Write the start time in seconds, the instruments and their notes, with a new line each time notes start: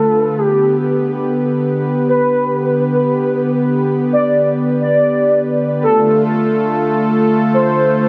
Already playing: analog synth pad D3 A3 F4 B4, analog synth lead A4
0.38 analog synth pad B3 G4, analog synth lead G4
2.08 analog synth lead B4
4.13 analog synth lead D5
4.81 analog synth lead D5
5.83 analog synth pad D3 A3 F4 A4, analog synth lead A4
7.54 analog synth lead C5